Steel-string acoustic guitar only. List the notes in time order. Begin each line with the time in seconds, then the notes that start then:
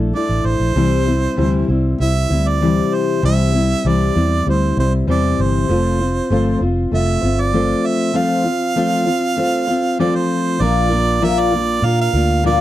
Already playing: A3 D4 E4 A4
0.14 A3 D4 E4 A4
0.75 C3 E3 G3 C4 E4 C5
1.07 G3 C4 E4
1.36 C3 E3 G3 C4 E4 C5
1.68 G3 C4 E4 C5
1.99 G3 C4 E4 C5
2.30 G3 C4 E4 C5
2.61 C3 E3 G3 C4 E4 C5
3.22 C3 E3 G3 C4 E4 C5
3.53 G3 C4 E4 C5
3.84 C3 E3 G3 C4 E4 C5
4.15 G3 C4 E4 C5
4.46 G3 C4 E4 C5
4.76 G3 C4 E4 C5
5.07 C3 E3 G3 C4 E4 C5
5.68 F3 A3 C4 F4 C5
6.00 C4 F4 C5
6.30 F3 A3 C4 F4 C5
6.61 C4 F4 C5
6.92 A3 C4 F4 C5
7.22 C4 F4 C5
7.53 F3 A3 C4 F4 C5
8.13 F3 A3 C4 F4 C5
8.44 C4 F4 C5
8.75 F3 A3 C4 F4 C5
9.05 C4 F4 C5
9.36 A3 C4 F4 C5
9.67 C4 F4 C5
9.99 F3 A3 C4 F4 C5
10.60 A#2 F3 A#3 D4 F4 A#4
10.90 A#3 D4 F4 A#4
11.21 A#2 F3 A#3 D4 F4 A#4
11.51 A#3 D4 F4 A#4
11.82 A#3 D4 F4 A#4
12.13 A#3 D4 F4 A#4
12.43 A#2 F3 A#3 D4 F4 A#4